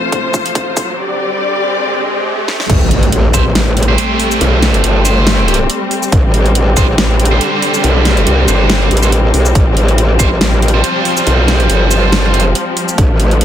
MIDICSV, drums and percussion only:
0, 0, Header, 1, 2, 480
1, 0, Start_track
1, 0, Key_signature, 0, "minor"
1, 0, Tempo, 428571
1, 1099, Time_signature, 4, 2, 24, 8
1, 15062, End_track
2, 0, Start_track
2, 0, Title_t, "Drums"
2, 139, Note_on_c, 9, 36, 101
2, 139, Note_on_c, 9, 42, 76
2, 251, Note_off_c, 9, 36, 0
2, 251, Note_off_c, 9, 42, 0
2, 379, Note_on_c, 9, 36, 108
2, 379, Note_on_c, 9, 82, 55
2, 491, Note_off_c, 9, 36, 0
2, 491, Note_off_c, 9, 82, 0
2, 511, Note_on_c, 9, 42, 52
2, 619, Note_off_c, 9, 42, 0
2, 619, Note_on_c, 9, 36, 105
2, 619, Note_on_c, 9, 42, 77
2, 731, Note_off_c, 9, 36, 0
2, 731, Note_off_c, 9, 42, 0
2, 859, Note_on_c, 9, 36, 106
2, 859, Note_on_c, 9, 46, 92
2, 859, Note_on_c, 9, 82, 58
2, 971, Note_off_c, 9, 36, 0
2, 971, Note_off_c, 9, 46, 0
2, 971, Note_off_c, 9, 82, 0
2, 2779, Note_on_c, 9, 38, 61
2, 2891, Note_off_c, 9, 38, 0
2, 2911, Note_on_c, 9, 38, 76
2, 3019, Note_on_c, 9, 36, 121
2, 3019, Note_on_c, 9, 42, 76
2, 3019, Note_on_c, 9, 49, 97
2, 3023, Note_off_c, 9, 38, 0
2, 3131, Note_off_c, 9, 36, 0
2, 3131, Note_off_c, 9, 42, 0
2, 3131, Note_off_c, 9, 49, 0
2, 3259, Note_on_c, 9, 42, 56
2, 3371, Note_off_c, 9, 42, 0
2, 3391, Note_on_c, 9, 42, 38
2, 3499, Note_off_c, 9, 42, 0
2, 3499, Note_on_c, 9, 42, 84
2, 3611, Note_off_c, 9, 42, 0
2, 3739, Note_on_c, 9, 36, 67
2, 3739, Note_on_c, 9, 42, 56
2, 3739, Note_on_c, 9, 82, 79
2, 3851, Note_off_c, 9, 36, 0
2, 3851, Note_off_c, 9, 42, 0
2, 3851, Note_off_c, 9, 82, 0
2, 3979, Note_on_c, 9, 38, 122
2, 3979, Note_on_c, 9, 42, 84
2, 4091, Note_off_c, 9, 38, 0
2, 4091, Note_off_c, 9, 42, 0
2, 4219, Note_on_c, 9, 42, 49
2, 4285, Note_off_c, 9, 42, 0
2, 4285, Note_on_c, 9, 42, 65
2, 4397, Note_off_c, 9, 42, 0
2, 4459, Note_on_c, 9, 42, 82
2, 4571, Note_off_c, 9, 42, 0
2, 4699, Note_on_c, 9, 46, 99
2, 4811, Note_off_c, 9, 46, 0
2, 4831, Note_on_c, 9, 82, 52
2, 4939, Note_on_c, 9, 42, 80
2, 4943, Note_off_c, 9, 82, 0
2, 5051, Note_off_c, 9, 42, 0
2, 5179, Note_on_c, 9, 38, 63
2, 5179, Note_on_c, 9, 42, 57
2, 5291, Note_off_c, 9, 38, 0
2, 5291, Note_off_c, 9, 42, 0
2, 5311, Note_on_c, 9, 42, 37
2, 5419, Note_off_c, 9, 42, 0
2, 5419, Note_on_c, 9, 42, 84
2, 5531, Note_off_c, 9, 42, 0
2, 5659, Note_on_c, 9, 42, 57
2, 5659, Note_on_c, 9, 82, 78
2, 5771, Note_off_c, 9, 42, 0
2, 5771, Note_off_c, 9, 82, 0
2, 5899, Note_on_c, 9, 38, 121
2, 5899, Note_on_c, 9, 42, 85
2, 6011, Note_off_c, 9, 38, 0
2, 6011, Note_off_c, 9, 42, 0
2, 6139, Note_on_c, 9, 42, 50
2, 6205, Note_off_c, 9, 42, 0
2, 6205, Note_on_c, 9, 42, 68
2, 6317, Note_off_c, 9, 42, 0
2, 6379, Note_on_c, 9, 42, 85
2, 6491, Note_off_c, 9, 42, 0
2, 6619, Note_on_c, 9, 46, 95
2, 6731, Note_off_c, 9, 46, 0
2, 6750, Note_on_c, 9, 82, 51
2, 6859, Note_on_c, 9, 36, 125
2, 6859, Note_on_c, 9, 42, 82
2, 6862, Note_off_c, 9, 82, 0
2, 6971, Note_off_c, 9, 36, 0
2, 6971, Note_off_c, 9, 42, 0
2, 7099, Note_on_c, 9, 42, 54
2, 7211, Note_off_c, 9, 42, 0
2, 7230, Note_on_c, 9, 42, 35
2, 7339, Note_off_c, 9, 42, 0
2, 7339, Note_on_c, 9, 42, 83
2, 7451, Note_off_c, 9, 42, 0
2, 7579, Note_on_c, 9, 36, 71
2, 7579, Note_on_c, 9, 42, 53
2, 7579, Note_on_c, 9, 82, 76
2, 7691, Note_off_c, 9, 36, 0
2, 7691, Note_off_c, 9, 42, 0
2, 7691, Note_off_c, 9, 82, 0
2, 7819, Note_on_c, 9, 38, 118
2, 7819, Note_on_c, 9, 42, 78
2, 7931, Note_off_c, 9, 38, 0
2, 7931, Note_off_c, 9, 42, 0
2, 8059, Note_on_c, 9, 42, 50
2, 8124, Note_off_c, 9, 42, 0
2, 8124, Note_on_c, 9, 42, 64
2, 8236, Note_off_c, 9, 42, 0
2, 8299, Note_on_c, 9, 42, 85
2, 8411, Note_off_c, 9, 42, 0
2, 8539, Note_on_c, 9, 46, 93
2, 8651, Note_off_c, 9, 46, 0
2, 8670, Note_on_c, 9, 82, 52
2, 8779, Note_on_c, 9, 42, 76
2, 8782, Note_off_c, 9, 82, 0
2, 8891, Note_off_c, 9, 42, 0
2, 9019, Note_on_c, 9, 38, 62
2, 9019, Note_on_c, 9, 42, 54
2, 9131, Note_off_c, 9, 38, 0
2, 9131, Note_off_c, 9, 42, 0
2, 9150, Note_on_c, 9, 42, 36
2, 9259, Note_off_c, 9, 42, 0
2, 9259, Note_on_c, 9, 42, 76
2, 9371, Note_off_c, 9, 42, 0
2, 9499, Note_on_c, 9, 42, 53
2, 9499, Note_on_c, 9, 82, 79
2, 9611, Note_off_c, 9, 42, 0
2, 9611, Note_off_c, 9, 82, 0
2, 9739, Note_on_c, 9, 38, 121
2, 9739, Note_on_c, 9, 42, 75
2, 9851, Note_off_c, 9, 38, 0
2, 9851, Note_off_c, 9, 42, 0
2, 9979, Note_on_c, 9, 42, 47
2, 10045, Note_off_c, 9, 42, 0
2, 10045, Note_on_c, 9, 42, 65
2, 10110, Note_on_c, 9, 82, 58
2, 10157, Note_off_c, 9, 42, 0
2, 10219, Note_on_c, 9, 42, 83
2, 10222, Note_off_c, 9, 82, 0
2, 10331, Note_off_c, 9, 42, 0
2, 10459, Note_on_c, 9, 46, 92
2, 10571, Note_off_c, 9, 46, 0
2, 10591, Note_on_c, 9, 82, 54
2, 10699, Note_on_c, 9, 36, 121
2, 10699, Note_on_c, 9, 42, 71
2, 10703, Note_off_c, 9, 82, 0
2, 10811, Note_off_c, 9, 36, 0
2, 10811, Note_off_c, 9, 42, 0
2, 10939, Note_on_c, 9, 42, 51
2, 11051, Note_off_c, 9, 42, 0
2, 11071, Note_on_c, 9, 42, 35
2, 11179, Note_off_c, 9, 42, 0
2, 11179, Note_on_c, 9, 42, 76
2, 11291, Note_off_c, 9, 42, 0
2, 11419, Note_on_c, 9, 36, 68
2, 11419, Note_on_c, 9, 42, 49
2, 11419, Note_on_c, 9, 82, 82
2, 11531, Note_off_c, 9, 36, 0
2, 11531, Note_off_c, 9, 42, 0
2, 11531, Note_off_c, 9, 82, 0
2, 11659, Note_on_c, 9, 38, 119
2, 11659, Note_on_c, 9, 42, 75
2, 11771, Note_off_c, 9, 38, 0
2, 11771, Note_off_c, 9, 42, 0
2, 11899, Note_on_c, 9, 42, 47
2, 11965, Note_off_c, 9, 42, 0
2, 11965, Note_on_c, 9, 42, 61
2, 12077, Note_off_c, 9, 42, 0
2, 12139, Note_on_c, 9, 42, 78
2, 12251, Note_off_c, 9, 42, 0
2, 12379, Note_on_c, 9, 46, 87
2, 12491, Note_off_c, 9, 46, 0
2, 12511, Note_on_c, 9, 82, 56
2, 12619, Note_on_c, 9, 42, 72
2, 12623, Note_off_c, 9, 82, 0
2, 12731, Note_off_c, 9, 42, 0
2, 12859, Note_on_c, 9, 38, 60
2, 12859, Note_on_c, 9, 42, 51
2, 12971, Note_off_c, 9, 38, 0
2, 12971, Note_off_c, 9, 42, 0
2, 12991, Note_on_c, 9, 42, 33
2, 13099, Note_off_c, 9, 42, 0
2, 13099, Note_on_c, 9, 42, 74
2, 13211, Note_off_c, 9, 42, 0
2, 13339, Note_on_c, 9, 42, 51
2, 13339, Note_on_c, 9, 82, 79
2, 13451, Note_off_c, 9, 42, 0
2, 13451, Note_off_c, 9, 82, 0
2, 13579, Note_on_c, 9, 38, 113
2, 13579, Note_on_c, 9, 42, 79
2, 13691, Note_off_c, 9, 38, 0
2, 13691, Note_off_c, 9, 42, 0
2, 13819, Note_on_c, 9, 42, 46
2, 13885, Note_off_c, 9, 42, 0
2, 13885, Note_on_c, 9, 42, 60
2, 13997, Note_off_c, 9, 42, 0
2, 14059, Note_on_c, 9, 42, 80
2, 14171, Note_off_c, 9, 42, 0
2, 14299, Note_on_c, 9, 46, 94
2, 14411, Note_off_c, 9, 46, 0
2, 14431, Note_on_c, 9, 82, 57
2, 14539, Note_on_c, 9, 36, 115
2, 14539, Note_on_c, 9, 42, 76
2, 14543, Note_off_c, 9, 82, 0
2, 14651, Note_off_c, 9, 36, 0
2, 14651, Note_off_c, 9, 42, 0
2, 14779, Note_on_c, 9, 42, 53
2, 14891, Note_off_c, 9, 42, 0
2, 14911, Note_on_c, 9, 42, 34
2, 15019, Note_off_c, 9, 42, 0
2, 15019, Note_on_c, 9, 42, 77
2, 15062, Note_off_c, 9, 42, 0
2, 15062, End_track
0, 0, End_of_file